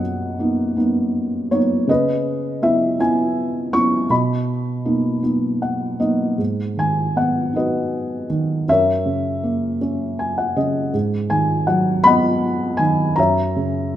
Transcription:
Already playing: F#2 A#3 B3 D#4 A#4 D#5 F#5
0.39 A#3 B3 D#4
0.77 A#3 B3 D#4
1.51 A#3 B3 D#4 C#5
1.87 C#3 B4 D#5
2.62 B3 C#4 E4 E5
2.99 B3 C#4 E4 G#5
3.73 B3 C#4 E4 C#6
4.10 B2 D#5 B5
4.85 A#3 B3 D#4
5.23 A#3 B3 D#4
5.62 F#5
5.99 A#3 B3 D#4 D#5
6.38 G#2
6.77 D#3 G#5
7.16 B3 F#5
7.53 D#4 F#4 B4 D#5
8.30 D#3
8.68 F#2 A#4 C#5 E5
9.05 C#3
9.44 A#3
9.81 C#4
10.19 G#5
10.38 F#5
10.56 C#3 D#5
10.93 G#2
11.30 D#3 G#5
11.67 F#3 F#5
12.04 B3 D#5 F#5 B5
12.77 D#3 G#5
13.16 F#2 C#5 E5 A#5
13.56 C#3

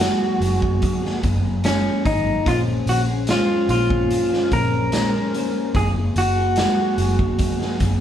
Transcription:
Already playing: F#4
0.00 F#3 A#3 G#4, snare
0.40 F#1 F#3 A#3, closed hi-hat
0.45 G#4
0.62 kick
0.82 kick, closed hi-hat
1.02 A#3 F4 G#4, snare
1.22 F#1 F#3 A#3 F4 G#4, kick, closed hi-hat
1.64 F#3 A#3 C#4 F4 G#4, snare, closed hi-hat
1.84 A#3 F4 G#4
2.05 G#1 F#3 A#3 D#4 F4 G#4, kick, closed hi-hat
2.45 A#1 A#3 C#4 F4 G#4 C5, kick, closed hi-hat
2.86 A#1 F#4, closed hi-hat
3.07 C#4 G#4 C5
3.27 A#3 C#4 F4 G#4 C5, snare, closed hi-hat
3.49 C#4 G#4 C5
3.69 A#1 A#3 C#4 F4 G#4, closed hi-hat
3.73 C5
3.90 kick
4.11 closed hi-hat
4.31 C#4 G#4 C5, snare
4.52 A#1 A#3 C#4 G#4 A#4 C5, kick, closed hi-hat
4.92 A#3 C#4 G#4 C5, snare, closed hi-hat
5.13 C#4 G#4 C5
5.33 A#3 C#4 G#4, closed hi-hat
5.37 C5
5.75 F#1 F#3 A#3 F4 G#4, kick, closed hi-hat
5.95 A#3 F4 G#4
6.16 F#1 F#4, closed hi-hat
6.36 A#3 F4 G#4
6.56 F#3 A#3 F4 G#4, snare, closed hi-hat
6.77 A#3 F4 G#4
6.98 F#1 F#3 A#3 G#4, closed hi-hat
7.19 kick
7.39 kick, closed hi-hat
7.59 A#3 F4 G#4, snare
7.80 F#1 F#3 A#3 F4, kick, closed hi-hat
7.84 G#4

